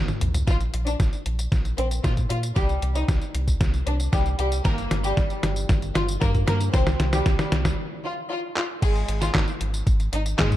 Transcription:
0.08 snare, closed hi-hat, high tom, tambourine
0.21 A#1, closed hi-hat, mid tom
0.34 closed hi-hat, mid tom, tambourine
0.47 A#1 F4, kick, snare, closed hi-hat, tambourine
0.61 closed hi-hat, tambourine
0.74 A#1, closed hi-hat
0.86 D4, closed hi-hat, tambourine
1.00 A#1, kick, snare, closed hi-hat, tambourine
1.13 closed hi-hat, tambourine
1.26 A#1, closed hi-hat
1.39 closed hi-hat, tambourine
1.52 A#1, kick, snare, closed hi-hat, tambourine
1.65 closed hi-hat, tambourine
1.78 A#1 C4, closed hi-hat
1.91 closed hi-hat, tambourine
2.04 A#2 F4, kick, snare, closed hi-hat, tambourine
2.17 kick, closed hi-hat, tambourine
2.30 A#2 F4, closed hi-hat
2.43 closed hi-hat, tambourine
2.56 C2 G3 G4, kick, snare, closed hi-hat, tambourine
2.69 closed hi-hat, tambourine
2.82 C2, closed hi-hat
2.95 D#4, closed hi-hat, tambourine
3.08 C2, kick, snare, closed hi-hat, tambourine
3.22 closed hi-hat, tambourine
3.34 C2, closed hi-hat
3.48 kick, closed hi-hat, tambourine
3.61 C2, kick, snare, closed hi-hat, tambourine
3.74 closed hi-hat, tambourine
3.87 C2 D4, closed hi-hat
4.00 closed hi-hat, tambourine
4.13 C2 G3 G4, kick, snare, closed hi-hat, tambourine
4.26 closed hi-hat, tambourine
4.39 C2 G3 G4, closed hi-hat
4.52 closed hi-hat, tambourine
4.65 G1 A#3 A#4, kick, snare, closed hi-hat, tambourine
4.78 closed hi-hat, tambourine
4.91 G1, snare, closed hi-hat
5.04 G3 G4, closed hi-hat, tambourine
5.17 G1, kick, snare, closed hi-hat, tambourine
5.30 closed hi-hat, tambourine
5.43 G1, snare, closed hi-hat
5.56 closed hi-hat, tambourine
5.69 G1, kick, snare, closed hi-hat, tambourine
5.82 closed hi-hat, tambourine
5.95 G1 F4, snare, closed hi-hat
6.08 closed hi-hat, tambourine
6.21 G2 A#3 A#4, kick, snare, closed hi-hat, tambourine
6.34 kick, closed hi-hat, tambourine
6.47 G2 A#3 A#4, snare, closed hi-hat
6.61 closed hi-hat, tambourine
6.74 C2 C4 C5, kick, snare, closed hi-hat, tambourine
6.87 snare, closed hi-hat, tambourine
7.00 C2, snare, closed hi-hat
7.13 G3 G4, snare, closed hi-hat, tambourine
7.26 C2, kick, snare, closed hi-hat, tambourine
7.39 snare, closed hi-hat, tambourine
7.52 C2, snare, closed hi-hat
7.65 kick, snare, closed hi-hat, tambourine
8.04 F4
8.30 F4
8.56 F4, clap
8.82 G#1 G#3 G#4, kick, closed hi-hat, crash, tambourine
8.96 closed hi-hat, tambourine
9.08 G#1, closed hi-hat
9.21 F4, snare, closed hi-hat, tambourine
9.34 G#1, kick, snare, clap, closed hi-hat, tambourine
9.48 closed hi-hat, tambourine
9.61 G#1, closed hi-hat
9.74 closed hi-hat, tambourine
9.87 G#1, kick, closed hi-hat, tambourine
10.00 closed hi-hat, tambourine
10.13 G#1 D#4, closed hi-hat
10.26 closed hi-hat, tambourine
10.39 G#2 G#3 G#4, kick, snare, clap, closed hi-hat, tambourine
10.52 kick, closed hi-hat, tambourine

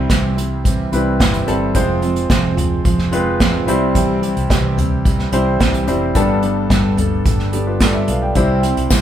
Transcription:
Already playing: C3 G3 C4 E4 C5
0.09 C2 C3 E3 G3 C4 E4, kick, snare, closed hi-hat
0.37 G3 C4 E4, closed hi-hat
0.64 E3 G3 C4 E4, kick, closed hi-hat
0.92 C2 G3 C4 E4 B4, closed hi-hat
1.19 G1 C3 E3 G3 C4 E4, kick, snare, closed hi-hat
1.34 closed hi-hat
1.47 G1 G3 C4 E4 A4, closed hi-hat
1.74 F1 F2 C3 F3 G#3 C4 F4 C5, kick, closed hi-hat
2.02 F3 G#3 C4 F4, closed hi-hat
2.16 closed hi-hat
2.30 F1 F2 C3 F3 G#3 C4 F4, kick, snare, closed hi-hat
2.57 F3 G#3 C4 F4, closed hi-hat, floor tom
2.84 F1 F3 G#3 C4 F4, kick, closed hi-hat
2.99 snare
3.12 F3 G#3 C4 F4 B4, closed hi-hat
3.39 F2 C3 F3 G#3 C4 F4, kick, snare, closed hi-hat
3.67 C2 C3 G3 C4 E4 G4 C5, closed hi-hat
3.95 C3 E3 G3 C4 G4, kick, closed hi-hat
4.22 G3 C4 G4, closed hi-hat
4.37 C2, closed hi-hat
4.49 C2 C3 E3 G3 C4 G4, kick, snare, closed hi-hat
4.77 G3 C4 G4, closed hi-hat, floor tom
5.05 E3 G3 C4 G4, kick, closed hi-hat
5.19 snare
5.32 C2 G3 C4 E4 G4 C5, closed hi-hat
5.60 C2 C3 E3 G3 C4 G4, kick, snare, closed hi-hat
5.74 closed hi-hat
5.87 F1 G3 C4 E4 G4 C5, closed hi-hat
6.15 G1 G2 G3 B3 D4 A4, kick, closed hi-hat
6.42 B3 D4 A4, closed hi-hat
6.70 G1 G3 B3 D4 A4, kick, snare, closed hi-hat
6.97 B3 D4 A4, closed hi-hat, floor tom
7.25 G1 G3 B3 D4 A4, kick, closed hi-hat
7.39 snare
7.52 B3 D4 G4 A4, closed hi-hat
7.67 F4 B4
7.80 G3 B3 D4 A4 D5, kick, snare, closed hi-hat
7.94 B4 E5
8.07 B1 B3 D4 A4 B4 F5, closed hi-hat
8.22 D5 G5
8.35 C2 C3 G3 C4 E4 G4 C5, kick, closed hi-hat
8.63 C4 E4 G4, closed hi-hat
8.77 C2, closed hi-hat
8.90 C2 C3 G3 C4 E4 G4, kick, snare, closed hi-hat, tambourine

